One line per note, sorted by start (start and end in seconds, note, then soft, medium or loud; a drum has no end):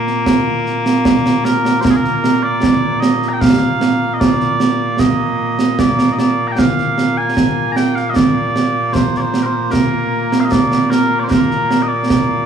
0.00 12.46 A#2 medium
0.00 12.46 A#3 medium
0.07 snare soft
0.26 concert bass drum soft
0.26 snare medium
0.66 snare soft
0.86 snare medium
1.05 concert bass drum medium
1.05 snare loud
1.26 snare medium
1.45 1.81 A#4 medium
1.45 snare medium
1.65 snare medium
1.81 1.91 A#4 medium
1.81 1.84 C5 medium
1.85 concert bass drum medium
1.85 snare loud
1.91 1.97 G#4 medium
1.97 2.43 A#4 medium
2.04 snare soft
2.24 snare medium
2.43 3.00 D5 medium
2.63 concert bass drum medium
2.63 snare loud
3.00 3.29 D#5 medium
3.00 snare medium
3.22 snare soft
3.29 3.33 A#5 medium
3.33 3.41 G5 medium
3.41 4.14 F5 loud
3.41 concert bass drum medium
3.41 snare loud
3.81 snare medium
4.14 4.20 D#5 medium
4.20 5.00 D5 loud
4.20 concert bass drum medium
4.20 snare loud
4.40 snare soft
4.60 snare medium
4.99 5.79 D#5 medium
4.99 concert bass drum medium
4.99 snare loud
5.59 snare medium
5.79 6.13 D5 loud
5.79 concert bass drum medium
5.79 snare medium
5.99 snare medium
6.13 6.19 D#5 medium
6.19 6.48 D5 loud
6.19 snare medium
6.48 6.52 A#5 medium
6.52 6.59 G5 medium
6.59 7.17 F5 loud
6.59 concert bass drum medium
6.59 snare medium
6.78 snare soft
6.98 snare medium
7.17 7.72 G#5 loud
7.37 concert bass drum medium
7.37 snare medium
7.72 7.76 A#5 loud
7.76 7.95 G5 loud
7.76 snare medium
7.95 8.10 F5 loud
7.95 snare soft
8.10 8.16 D#5 medium
8.16 8.93 D5 loud
8.16 concert bass drum medium
8.16 snare medium
8.56 snare medium
8.93 9.17 C5 medium
8.93 concert bass drum medium
8.93 snare medium
9.15 9.20 D5 medium
9.15 snare soft
9.20 9.42 C5 loud
9.34 snare medium
9.42 9.45 A#4 medium
9.42 9.71 C5 loud
9.71 10.40 A#4 medium
9.71 concert bass drum medium
9.71 snare medium
10.32 snare medium
10.40 10.45 F5 medium
10.45 10.52 D#5 medium
10.52 10.90 D5 medium
10.52 concert bass drum medium
10.52 snare medium
10.72 snare medium
10.90 11.19 A#4 medium
10.90 snare medium
11.19 11.24 D5 medium
11.24 11.30 C5 medium
11.30 11.82 A#4 medium
11.30 concert bass drum medium
11.30 snare medium
11.51 snare soft
11.71 snare medium
11.82 11.88 D#5 medium
11.88 12.46 D5 loud
12.10 concert bass drum medium
12.10 snare medium